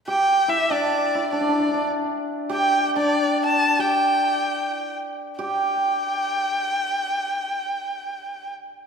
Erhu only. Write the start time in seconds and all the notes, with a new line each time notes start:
0.08 G5
0.49 E5
0.72 D5
1.31 D5
2.53 G5
2.97 D5
3.45 A5
3.80 G5
5.40 G5